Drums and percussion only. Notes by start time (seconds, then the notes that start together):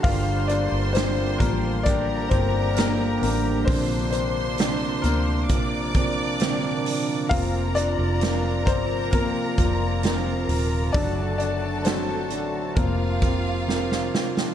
0.04 kick, hi-hat pedal, open hi-hat
0.49 hi-hat pedal, open hi-hat
0.95 snare, hi-hat pedal, open hi-hat
1.40 kick, hi-hat pedal, open hi-hat
1.86 kick, hi-hat pedal, open hi-hat
2.31 kick, hi-hat pedal, open hi-hat
2.76 snare, hi-hat pedal, open hi-hat
3.22 hi-hat pedal, open hi-hat
3.68 kick, hi-hat pedal, open hi-hat
4.12 hi-hat pedal, open hi-hat
4.58 snare, hi-hat pedal, open hi-hat
5.04 hi-hat pedal, open hi-hat
5.49 kick, hi-hat pedal, open hi-hat
5.94 kick, hi-hat pedal, open hi-hat
6.40 snare, hi-hat pedal, open hi-hat
6.86 hi-hat pedal, open hi-hat
7.31 kick, hi-hat pedal, open hi-hat
7.76 hi-hat pedal, open hi-hat
8.21 snare, hi-hat pedal, open hi-hat
8.67 kick, hi-hat pedal, open hi-hat
9.13 kick, hi-hat pedal, open hi-hat
9.58 kick, hi-hat pedal, open hi-hat
10.03 snare, hi-hat pedal, open hi-hat
10.49 hi-hat pedal, open hi-hat
10.94 kick, hi-hat pedal, open hi-hat
11.40 hi-hat pedal, open hi-hat
11.85 snare, hi-hat pedal, open hi-hat
12.30 hi-hat pedal, open hi-hat
12.76 kick, hi-hat pedal, open hi-hat
13.22 kick, hi-hat pedal, open hi-hat
13.69 snare
13.92 snare
14.15 snare
14.37 snare